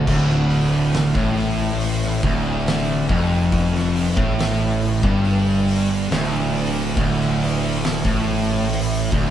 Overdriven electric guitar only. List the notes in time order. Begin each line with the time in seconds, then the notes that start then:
0.08 D2
1.15 A2
2.23 D2
3.09 F2
4.16 A2
5.03 G2
6.11 D2
6.97 D2
8.05 A2
9.12 D2